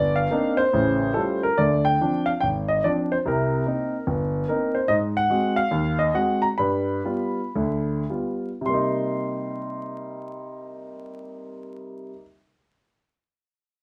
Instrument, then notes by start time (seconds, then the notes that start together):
grand piano
Already playing: G1 D5
0.16 F5
0.31 A#3 C4 D4 D#4
0.57 C5
0.73 A1 C#3
1.14 G3 A3 C#4 F4 A4
1.43 A#4
1.58 D2 D3 D5
1.85 G5
2.01 F3 C4 D4
2.26 F5
2.40 G#1 G5
2.68 D#5
2.84 F3 C4 D4 D5
3.12 C5
3.25 C2 C3 A#4
3.66 A#3 C4 D#4
4.07 G1
4.48 A#3 C4 D#4 A#4
4.75 C5
4.88 G#2 D#5
5.17 F#5
5.30 G#3 C4 F#4
5.56 F5
5.71 D#2
5.99 D#5
6.14 G#3 C4 F#4 F#5
6.42 A#5
6.58 G2 B5
7.05 G3 B3 F4
7.55 D2 D3
8.10 G3 B3 F4
8.61 C3
8.66 G3 A#3 C6
8.74 D#4